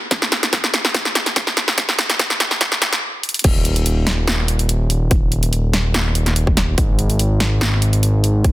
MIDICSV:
0, 0, Header, 1, 3, 480
1, 0, Start_track
1, 0, Tempo, 416667
1, 128, Time_signature, 4, 2, 24, 8
1, 9815, End_track
2, 0, Start_track
2, 0, Title_t, "Analog synth bass"
2, 0, Program_c, 0, 38
2, 3969, Note_on_c, 0, 27, 94
2, 7786, Note_off_c, 0, 27, 0
2, 7809, Note_on_c, 0, 32, 86
2, 9815, Note_off_c, 0, 32, 0
2, 9815, End_track
3, 0, Start_track
3, 0, Title_t, "Drums"
3, 127, Note_on_c, 9, 38, 88
3, 127, Note_on_c, 9, 42, 87
3, 129, Note_on_c, 9, 36, 95
3, 242, Note_off_c, 9, 38, 0
3, 242, Note_off_c, 9, 42, 0
3, 244, Note_off_c, 9, 36, 0
3, 254, Note_on_c, 9, 38, 85
3, 368, Note_off_c, 9, 38, 0
3, 368, Note_on_c, 9, 38, 90
3, 368, Note_on_c, 9, 42, 67
3, 483, Note_off_c, 9, 38, 0
3, 483, Note_off_c, 9, 42, 0
3, 495, Note_on_c, 9, 38, 83
3, 495, Note_on_c, 9, 42, 66
3, 608, Note_off_c, 9, 38, 0
3, 608, Note_off_c, 9, 42, 0
3, 608, Note_on_c, 9, 38, 87
3, 608, Note_on_c, 9, 42, 76
3, 609, Note_on_c, 9, 36, 107
3, 723, Note_off_c, 9, 38, 0
3, 723, Note_off_c, 9, 42, 0
3, 724, Note_off_c, 9, 36, 0
3, 735, Note_on_c, 9, 38, 85
3, 848, Note_off_c, 9, 38, 0
3, 848, Note_on_c, 9, 38, 98
3, 848, Note_on_c, 9, 42, 65
3, 964, Note_off_c, 9, 38, 0
3, 964, Note_off_c, 9, 42, 0
3, 975, Note_on_c, 9, 38, 92
3, 1089, Note_off_c, 9, 38, 0
3, 1089, Note_on_c, 9, 36, 93
3, 1089, Note_on_c, 9, 38, 101
3, 1089, Note_on_c, 9, 42, 82
3, 1204, Note_off_c, 9, 36, 0
3, 1204, Note_off_c, 9, 38, 0
3, 1204, Note_off_c, 9, 42, 0
3, 1214, Note_on_c, 9, 38, 81
3, 1329, Note_off_c, 9, 38, 0
3, 1329, Note_on_c, 9, 38, 102
3, 1329, Note_on_c, 9, 42, 71
3, 1444, Note_off_c, 9, 38, 0
3, 1444, Note_off_c, 9, 42, 0
3, 1454, Note_on_c, 9, 38, 81
3, 1454, Note_on_c, 9, 42, 65
3, 1568, Note_off_c, 9, 38, 0
3, 1568, Note_off_c, 9, 42, 0
3, 1568, Note_on_c, 9, 38, 100
3, 1568, Note_on_c, 9, 42, 83
3, 1569, Note_on_c, 9, 36, 105
3, 1683, Note_off_c, 9, 38, 0
3, 1683, Note_off_c, 9, 42, 0
3, 1684, Note_off_c, 9, 36, 0
3, 1694, Note_on_c, 9, 38, 91
3, 1808, Note_off_c, 9, 38, 0
3, 1808, Note_on_c, 9, 38, 95
3, 1808, Note_on_c, 9, 42, 68
3, 1923, Note_off_c, 9, 38, 0
3, 1923, Note_off_c, 9, 42, 0
3, 1934, Note_on_c, 9, 38, 95
3, 2048, Note_off_c, 9, 38, 0
3, 2048, Note_on_c, 9, 38, 102
3, 2048, Note_on_c, 9, 42, 84
3, 2049, Note_on_c, 9, 36, 100
3, 2163, Note_off_c, 9, 38, 0
3, 2163, Note_off_c, 9, 42, 0
3, 2164, Note_off_c, 9, 36, 0
3, 2174, Note_on_c, 9, 38, 93
3, 2288, Note_off_c, 9, 38, 0
3, 2288, Note_on_c, 9, 38, 103
3, 2288, Note_on_c, 9, 42, 70
3, 2403, Note_off_c, 9, 38, 0
3, 2403, Note_off_c, 9, 42, 0
3, 2414, Note_on_c, 9, 38, 96
3, 2414, Note_on_c, 9, 42, 71
3, 2528, Note_off_c, 9, 38, 0
3, 2528, Note_off_c, 9, 42, 0
3, 2528, Note_on_c, 9, 36, 109
3, 2528, Note_on_c, 9, 38, 104
3, 2528, Note_on_c, 9, 42, 77
3, 2643, Note_off_c, 9, 38, 0
3, 2643, Note_off_c, 9, 42, 0
3, 2644, Note_off_c, 9, 36, 0
3, 2653, Note_on_c, 9, 38, 92
3, 2767, Note_off_c, 9, 38, 0
3, 2767, Note_on_c, 9, 38, 107
3, 2767, Note_on_c, 9, 42, 69
3, 2882, Note_off_c, 9, 38, 0
3, 2882, Note_off_c, 9, 42, 0
3, 2892, Note_on_c, 9, 38, 94
3, 3005, Note_off_c, 9, 38, 0
3, 3005, Note_on_c, 9, 38, 107
3, 3005, Note_on_c, 9, 42, 82
3, 3009, Note_on_c, 9, 36, 100
3, 3120, Note_off_c, 9, 38, 0
3, 3120, Note_off_c, 9, 42, 0
3, 3124, Note_off_c, 9, 36, 0
3, 3131, Note_on_c, 9, 38, 93
3, 3245, Note_off_c, 9, 38, 0
3, 3245, Note_on_c, 9, 38, 116
3, 3245, Note_on_c, 9, 42, 78
3, 3360, Note_off_c, 9, 38, 0
3, 3360, Note_off_c, 9, 42, 0
3, 3371, Note_on_c, 9, 38, 89
3, 3371, Note_on_c, 9, 42, 63
3, 3486, Note_off_c, 9, 38, 0
3, 3486, Note_off_c, 9, 42, 0
3, 3726, Note_on_c, 9, 42, 56
3, 3789, Note_off_c, 9, 42, 0
3, 3789, Note_on_c, 9, 42, 63
3, 3852, Note_off_c, 9, 42, 0
3, 3852, Note_on_c, 9, 42, 79
3, 3909, Note_off_c, 9, 42, 0
3, 3909, Note_on_c, 9, 42, 87
3, 3965, Note_off_c, 9, 42, 0
3, 3965, Note_on_c, 9, 42, 87
3, 3965, Note_on_c, 9, 49, 100
3, 3969, Note_on_c, 9, 36, 116
3, 4080, Note_off_c, 9, 42, 0
3, 4080, Note_off_c, 9, 49, 0
3, 4084, Note_off_c, 9, 36, 0
3, 4205, Note_on_c, 9, 42, 66
3, 4320, Note_off_c, 9, 42, 0
3, 4332, Note_on_c, 9, 42, 69
3, 4445, Note_off_c, 9, 42, 0
3, 4445, Note_on_c, 9, 42, 78
3, 4560, Note_off_c, 9, 42, 0
3, 4685, Note_on_c, 9, 40, 82
3, 4685, Note_on_c, 9, 42, 69
3, 4800, Note_off_c, 9, 40, 0
3, 4800, Note_off_c, 9, 42, 0
3, 4925, Note_on_c, 9, 38, 124
3, 4925, Note_on_c, 9, 42, 84
3, 5040, Note_off_c, 9, 38, 0
3, 5040, Note_off_c, 9, 42, 0
3, 5165, Note_on_c, 9, 42, 77
3, 5280, Note_off_c, 9, 42, 0
3, 5291, Note_on_c, 9, 42, 65
3, 5404, Note_off_c, 9, 42, 0
3, 5404, Note_on_c, 9, 42, 86
3, 5519, Note_off_c, 9, 42, 0
3, 5644, Note_on_c, 9, 42, 69
3, 5760, Note_off_c, 9, 42, 0
3, 5885, Note_on_c, 9, 42, 82
3, 5888, Note_on_c, 9, 36, 120
3, 6001, Note_off_c, 9, 42, 0
3, 6004, Note_off_c, 9, 36, 0
3, 6126, Note_on_c, 9, 42, 67
3, 6241, Note_off_c, 9, 42, 0
3, 6253, Note_on_c, 9, 42, 69
3, 6367, Note_off_c, 9, 42, 0
3, 6367, Note_on_c, 9, 42, 78
3, 6482, Note_off_c, 9, 42, 0
3, 6607, Note_on_c, 9, 40, 77
3, 6607, Note_on_c, 9, 42, 66
3, 6722, Note_off_c, 9, 40, 0
3, 6722, Note_off_c, 9, 42, 0
3, 6847, Note_on_c, 9, 38, 121
3, 6847, Note_on_c, 9, 42, 81
3, 6962, Note_off_c, 9, 38, 0
3, 6962, Note_off_c, 9, 42, 0
3, 7087, Note_on_c, 9, 42, 72
3, 7202, Note_off_c, 9, 42, 0
3, 7214, Note_on_c, 9, 38, 35
3, 7214, Note_on_c, 9, 42, 62
3, 7328, Note_off_c, 9, 42, 0
3, 7328, Note_on_c, 9, 42, 83
3, 7330, Note_off_c, 9, 38, 0
3, 7443, Note_off_c, 9, 42, 0
3, 7455, Note_on_c, 9, 36, 64
3, 7569, Note_on_c, 9, 40, 57
3, 7569, Note_on_c, 9, 42, 70
3, 7571, Note_off_c, 9, 36, 0
3, 7684, Note_off_c, 9, 40, 0
3, 7684, Note_off_c, 9, 42, 0
3, 7808, Note_on_c, 9, 42, 78
3, 7809, Note_on_c, 9, 36, 126
3, 7923, Note_off_c, 9, 42, 0
3, 7925, Note_off_c, 9, 36, 0
3, 8049, Note_on_c, 9, 42, 65
3, 8164, Note_off_c, 9, 42, 0
3, 8174, Note_on_c, 9, 42, 66
3, 8288, Note_off_c, 9, 42, 0
3, 8288, Note_on_c, 9, 42, 78
3, 8403, Note_off_c, 9, 42, 0
3, 8528, Note_on_c, 9, 40, 75
3, 8528, Note_on_c, 9, 42, 61
3, 8643, Note_off_c, 9, 40, 0
3, 8643, Note_off_c, 9, 42, 0
3, 8768, Note_on_c, 9, 38, 123
3, 8768, Note_on_c, 9, 42, 80
3, 8884, Note_off_c, 9, 38, 0
3, 8884, Note_off_c, 9, 42, 0
3, 9009, Note_on_c, 9, 42, 70
3, 9124, Note_off_c, 9, 42, 0
3, 9136, Note_on_c, 9, 42, 62
3, 9250, Note_off_c, 9, 42, 0
3, 9250, Note_on_c, 9, 42, 79
3, 9366, Note_off_c, 9, 42, 0
3, 9490, Note_on_c, 9, 42, 62
3, 9606, Note_off_c, 9, 42, 0
3, 9729, Note_on_c, 9, 36, 126
3, 9729, Note_on_c, 9, 42, 77
3, 9815, Note_off_c, 9, 36, 0
3, 9815, Note_off_c, 9, 42, 0
3, 9815, End_track
0, 0, End_of_file